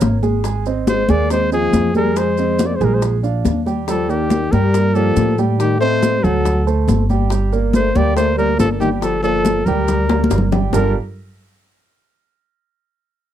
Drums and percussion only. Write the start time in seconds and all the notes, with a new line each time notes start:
0.01 high bongo, low bongo, high conga, maracas
0.23 high bongo, high conga, maracas
0.44 high bongo, maracas
0.66 high bongo, high conga, maracas
0.87 high bongo, high conga, maracas
1.09 high bongo, high conga, maracas
1.30 high bongo, high conga, maracas
1.52 high conga, maracas
1.73 high bongo, low bongo, high conga, maracas
1.94 high bongo, high conga, maracas
2.16 high bongo, high conga, maracas
2.37 high bongo, high conga, maracas
2.59 high bongo, high conga, maracas
2.81 high bongo, low conga, maracas
3.02 high bongo, high conga, maracas
3.23 high conga, maracas
3.45 high bongo, low bongo, high conga, maracas
3.66 high bongo, high conga, maracas
3.88 high bongo, high conga, maracas
4.09 high bongo, high conga, maracas
4.30 high bongo, high conga, maracas
4.52 high bongo, high conga, maracas
4.74 high bongo, high conga, maracas
4.95 high conga, maracas
5.16 high bongo, low bongo, high conga, maracas
5.38 high bongo, high conga, maracas
5.60 high bongo, high conga, maracas
5.81 high bongo, high conga, maracas
6.03 high bongo, high conga, maracas
6.24 high bongo, low conga, maracas
6.45 high bongo, high conga, low conga, maracas
6.67 high conga, maracas
6.88 high bongo, low bongo, high conga, maracas
7.09 high bongo, high conga, maracas
7.30 high bongo, high conga, maracas
7.52 high bongo, high conga, maracas
7.73 high bongo, high conga, maracas
7.95 high bongo, high conga, maracas
8.17 high bongo, high conga, maracas
8.38 high conga, maracas
8.60 high bongo, low bongo, high conga, maracas
8.81 high bongo, high conga, maracas
9.02 high bongo, high conga, maracas
9.24 high bongo, high conga, maracas
9.45 high bongo, high conga, maracas
9.66 high bongo, low conga, maracas
9.88 high bongo, high conga, low conga, maracas
10.09 high bongo, high conga, maracas
10.24 high conga
10.31 high bongo, maracas
10.38 low conga
10.52 low bongo, low conga, maracas
10.73 low bongo, low conga, maracas